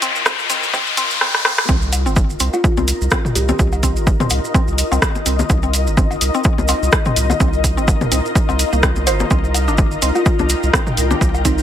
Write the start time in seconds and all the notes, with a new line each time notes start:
Already playing: C4 F4 A#4 D#5, riser
0.02 C4, open hi-hat, maracas
0.15 maracas
0.26 C4, kick, cross-stick, maracas
0.39 maracas
0.50 C4, open hi-hat, maracas
0.63 maracas
0.73 C4, kick, maracas
0.87 maracas
0.97 C4, open hi-hat, maracas
1.10 maracas
1.21 C4, cross-stick
1.34 cross-stick
1.45 C4, cross-stick
1.58 cross-stick
1.68 C2 C4 D#4 F4, kick, maracas
1.82 maracas
1.93 open hi-hat, cowbell, maracas
2.06 G1 C4, maracas
2.16 kick, maracas
2.21 A#4
2.30 maracas
2.40 C2 C4, open hi-hat, maracas
2.53 F4, cowbell, maracas
2.64 kick, maracas
2.71 D#5
2.77 C2 C4, low bongo, maracas
2.88 open hi-hat, maracas
3.01 C2, maracas
3.11 C4, kick, cross-stick, cowbell, maracas
3.25 mid tom, maracas
3.35 C2 G4, open hi-hat, maracas
3.49 C4 G4, low bongo, maracas
3.59 C2, kick, maracas
3.72 cowbell, maracas
3.83 C4, kick, open hi-hat, maracas
3.96 G1, maracas
4.07 kick, maracas
4.20 C4, mid tom, low bongo, maracas
4.30 C2, open hi-hat, cowbell, maracas
4.44 maracas
4.54 C4, kick, maracas
4.68 C2, maracas
4.78 open hi-hat, maracas
4.92 C2 C4, cowbell, maracas
5.02 kick, cross-stick, maracas
5.15 low bongo, maracas
5.26 C2 C4, open hi-hat, maracas
5.39 low bongo, maracas
5.49 C2, kick, cowbell, maracas
5.63 C4, maracas
5.74 open hi-hat, maracas
5.87 G1, maracas
5.97 C4, kick, maracas
6.11 cowbell, maracas
6.21 C2, open hi-hat, maracas
6.34 C4, maracas
6.44 kick, maracas
6.58 C2, low bongo, maracas
6.68 C4, open hi-hat, cowbell, maracas
6.82 C2, maracas
6.92 kick, cross-stick, maracas
7.05 C4, mid tom, maracas
7.16 C2, open hi-hat, maracas
7.30 cowbell, low bongo, maracas
7.40 C2 C4, kick, maracas
7.53 maracas
7.64 kick, open hi-hat, maracas
7.77 G1 C4, maracas
7.88 kick, cowbell, maracas
8.01 mid tom, low bongo, maracas
8.12 C2 C4, open hi-hat, maracas
8.26 maracas
8.35 kick, maracas
8.49 C2 C4, cowbell, maracas
8.59 open hi-hat, maracas
8.73 C2 A#3, maracas
8.83 C4, kick, cross-stick, maracas
8.96 low bongo, maracas
9.07 G1 C5, open hi-hat, cowbell, maracas
9.20 A#3, low bongo, maracas
9.30 C2 C4, kick, maracas
9.44 maracas
9.54 open hi-hat, cowbell, maracas
9.68 G1 D4, maracas
9.78 kick, maracas
9.91 maracas
10.02 C2 C4, open hi-hat, maracas
10.15 F4, cowbell, maracas
10.26 kick, maracas
10.33 G5
10.39 C2 D4, low bongo, maracas
10.49 open hi-hat, maracas
10.63 C2, maracas
10.74 C4, kick, cross-stick, cowbell, maracas
10.87 mid tom, maracas
10.97 C2, open hi-hat, maracas
11.11 D4, low bongo, maracas
11.21 C2, kick, maracas
11.34 cowbell, maracas
11.45 C4 D#4, kick, open hi-hat, maracas
11.58 G1 D#4, maracas